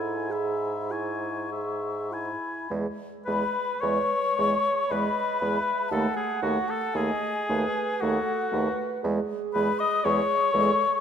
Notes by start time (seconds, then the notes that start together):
Already playing: G#2 E4 A4 G#5 B5
0.30 G#4 E5 B5
0.91 E4 G#5 C#6
1.52 G#4 E5
2.12 E4 G#5 B5
2.70 E2 G#3
3.25 E2 G#3 B4 B5
3.80 E2 B4 C#5 C#6
3.84 G#3
4.37 E2 G#3 C#5
4.89 E2 G#3 B4 D#5 B5
5.40 E2 G#3 E5
5.89 D#2 A3 A4 F#5 A5
6.14 G#4 G#5
6.39 D#2 F#4 F#5
6.43 A3
6.68 A4 A5
6.94 D#2 A3 G#4 D#5 G#5
7.49 D#2 A3 B4
8.00 D#2 A3 F#4 A4 F#5
8.52 D#2 A3 B4
9.03 E2 G#3 G#4
9.53 E2 G#3 B4 B5
9.79 D#5 D#6
10.04 E2 G#3 G#4 C#5 C#6
10.53 E2 G#3 A4